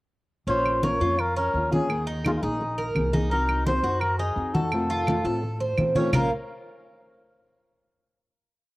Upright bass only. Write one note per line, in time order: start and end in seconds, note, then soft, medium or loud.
0.47 0.97 A#1 medium
1.00 1.50 F2 medium
1.54 2.37 D#2 medium
2.43 2.92 A#1 loud
2.95 3.78 C2 medium
3.83 4.33 F#2 medium
4.36 5.19 F2 medium
5.24 5.74 A2 medium
5.78 6.09 A#2 medium
6.13 6.30 A#1 medium